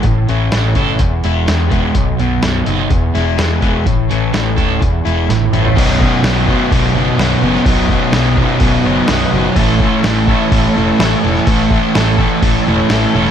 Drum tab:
CC |----------------|----------------|----------------|x---------------|
HH |x-x-x-x-x-x-x-x-|x-x-x-x-x-x-x-x-|x-x-x-x-x-x-x-x-|o---o---o---o---|
SD |----o-------o---|----o-----o-o---|----o-------o---|----o-------o--o|
T1 |----------------|----------------|-------------o--|----------------|
T2 |----------------|----------------|--------------o-|----------------|
FT |----------------|----------------|---------------o|----------------|
BD |o-----o-o-----o-|o-------o-----o-|o-----o-o-------|o-o---o-o-------|

CC |----------------|----------------|----------------|
HH |o---o---o---o---|o---o---o---o---|o---o---o---o---|
SD |----o-------o---|----o-------o--o|----o-------o--o|
T1 |----------------|----------------|----------------|
T2 |----------------|----------------|----------------|
FT |----------------|----------------|----------------|
BD |o-o---o-o-------|o-o---o-o-------|o-o---o-o-------|